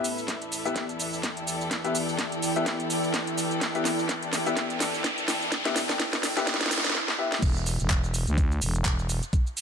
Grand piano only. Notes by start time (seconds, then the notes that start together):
0.65 B3 E4 G4 E5
1.84 B3 E4 G4 E5
2.56 B3 E4 G4 E5
3.75 B3 E4 G4 E5
4.46 B3 E4 G4 E5
5.65 B3 E4 G4 E5
6.37 B3 E4 G4 E5
7.19 B3 E4 G4 E5